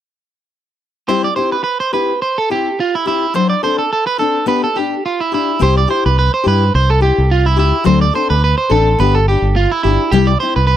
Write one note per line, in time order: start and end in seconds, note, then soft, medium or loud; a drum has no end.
1.08 1.27 G3 medium
1.08 1.27 C4 medium
1.08 1.27 E4 medium
1.08 1.27 G4 medium
1.08 1.23 C5 medium
1.24 1.36 D5 medium
1.36 1.56 C4 soft
1.36 1.55 E4 soft
1.36 1.55 G4 soft
1.36 1.51 C5 medium
1.52 1.62 B4 medium
1.64 1.79 B4 medium
1.80 1.93 C5 medium
1.93 2.12 C4 soft
1.93 2.12 E4 soft
1.93 2.11 G4 soft
1.93 2.21 B4 medium
2.22 2.37 C5 medium
2.38 2.51 A4 medium
2.50 2.69 C4 soft
2.50 2.69 E4 soft
2.50 2.68 G4 soft
2.50 2.78 G4 medium
2.80 2.94 F4 medium
2.95 3.06 E4 medium
3.06 3.26 C4 soft
3.06 3.25 E4 soft
3.06 3.34 E4 medium
3.06 3.24 G4 medium
3.34 3.53 F#3 medium
3.34 3.53 C4 medium
3.34 3.53 D4 medium
3.34 3.49 C5 medium
3.34 muted steel-string acoustic guitar stroke medium
3.50 3.63 D5 medium
3.63 3.83 C4 soft
3.63 3.82 D4 soft
3.63 3.81 A4 soft
3.63 3.78 C5 medium
3.78 3.91 A4 medium
3.93 4.06 A4 medium
4.07 4.19 B4 medium
4.18 4.39 C4 soft
4.18 4.38 D4 soft
4.18 4.37 A4 medium
4.18 4.47 A4 medium
4.46 4.65 B3 medium
4.46 4.65 D4 medium
4.46 4.66 G4 medium
4.46 4.63 B4 medium
4.64 4.76 A4 medium
4.76 4.95 D4 soft
4.76 4.94 G4 soft
4.76 5.04 G4 medium
5.06 5.20 F4 medium
5.20 5.33 E4 medium
5.32 5.51 D4 soft
5.32 5.61 E4 medium
5.32 5.50 G4 medium
5.59 5.85 C2 medium
5.59 5.78 C4 medium
5.59 5.79 E4 medium
5.59 5.79 G4 medium
5.59 5.76 C5 medium
5.77 5.90 D5 medium
5.88 6.08 E4 soft
5.88 6.06 G4 medium
5.88 6.04 C5 medium
6.06 6.29 C2 medium
6.06 6.18 B4 medium
6.19 6.33 B4 medium
6.34 6.46 C5 medium
6.44 6.70 G2 medium
6.44 6.64 E4 soft
6.44 6.63 G4 medium
6.48 6.74 B4 medium
6.75 7.10 C2 medium
6.75 6.89 C5 medium
6.90 7.02 A4 medium
7.01 7.21 E4 soft
7.01 7.19 G4 medium
7.01 7.29 G4 medium
7.18 7.59 C2 medium
7.31 7.45 F4 medium
7.46 7.58 E4 medium
7.57 7.71 C#2 medium
7.57 7.76 E4 soft
7.57 7.86 E4 medium
7.57 7.75 G4 medium
7.84 8.10 D2 loud
7.84 8.03 F#3 medium
7.84 8.04 C4 medium
7.84 8.04 D4 medium
7.84 8.04 A4 medium
7.84 8.01 C5 medium
8.01 8.14 D5 medium
8.14 8.33 C4 soft
8.14 8.33 D4 soft
8.14 8.32 A4 medium
8.14 8.29 C5 medium
8.30 8.53 D2 medium
8.30 8.43 B4 medium
8.44 8.57 B4 medium
8.58 8.70 C5 medium
8.70 8.94 A1 medium
8.70 8.89 C4 soft
8.70 8.88 D4 medium
8.70 8.88 A4 medium
8.70 8.98 A4 medium
8.99 9.35 G1 medium
8.99 9.17 B3 medium
8.99 9.17 D4 medium
8.99 9.18 G4 medium
8.99 9.14 B4 medium
9.15 9.27 A4 medium
9.28 9.47 D4 soft
9.28 9.55 G4 medium
9.28 9.46 G4 soft
9.42 9.66 G1 medium
9.56 9.70 F4 medium
9.72 9.82 E4 medium
9.83 9.97 G1 medium
9.83 10.03 D4 soft
9.83 10.10 E4 medium
9.83 10.02 G4 medium
10.11 10.35 C2 loud
10.11 10.30 G3 medium
10.11 10.30 E4 medium
10.11 10.26 G4 medium
10.11 10.31 G4 medium
10.11 muted steel-string acoustic guitar stroke medium
10.27 10.40 D5 medium
10.40 10.59 C4 soft
10.40 10.59 E4 soft
10.40 10.54 C5 medium
10.56 10.77 C2 medium
10.56 10.66 B4 medium
10.67 10.77 B4 medium